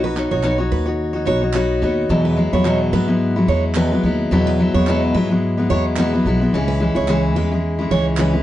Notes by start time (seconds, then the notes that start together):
Already playing: B1
0.03 D#4 F#4 B4 C#5
0.16 B3 D#4 F#4 C#5, clap
0.31 B1 D#4 F#4 C#5
0.43 B3 D#4 F#4 C#5, clap
0.58 D#4 F#4 C#5
0.72 D#2 B4
0.86 D#4 F#4 C#5
1.13 D#4 F#4 C#5
1.25 B1 B3 D#4 F#4 C#5
1.41 D#4 F#4 C#5
1.53 B3 D#4 F#4 B4 C#5, clap
1.82 D#2 B3 D#4 F#4 C#5
2.09 E2 B2 F#3 G#3 B3 E4
2.25 B4
2.36 F#3 G#3 B3 E4
2.53 E2 F#3 G#3 B3 E4 C#5
2.65 E2 B2 F#3 G#3 B3 E4, clap
2.93 G#2 F#3 G#3 B3 E4 B4
3.08 F#3 G#3 B3 E4
3.36 F#3 G#3 B3 E4
3.48 E2 F#3 G#3 B3 E4 C#5
3.75 E2 B2 F#3 G#3 B3 E4 B4, clap
3.91 F#3 G#3 B3 E4
4.03 D#2 F#3 G#3 B3 E4
4.31 E2 B2 F#3 G#3 B3 E4
4.47 B4
4.59 F#3 G#3 B3 E4
4.74 E2 F#3 G#3 B3 E4 C#5
4.87 E2 B2 F#3 G#3 B3 E4, clap
5.14 G#2 F#3 G#3 B3 E4 B4
5.30 F#3 G#3 B3 E4
5.57 F#3 G#3 B3 E4
5.69 E2 F#3 G#3 B3 E4 C#5
5.96 E2 B2 F#3 G#3 B3 E4 B4, clap
6.13 F#3 G#3 B3 E4
6.25 B1 F#3 G#3 B3 E4
6.41 F#3 G#3 B3 E4
6.53 C#2 C#3 E3 G#3 C#4 E4
6.68 B4
6.80 E3 G#3 C#4 E4
6.95 C#2 G#3 C#4 E4 C#5
7.08 C#3 E3 G#3 C#4 E4, clap
7.36 E2 E3 G#3 C#4 E4 B4
7.52 G#3 C#4 E4
7.79 G#3 C#4 E4
7.91 C#2 E3 G#3 C#4 E4 C#5
8.17 C#3 E3 G#3 C#4 E4 B4, clap
8.33 G#3 C#4 E4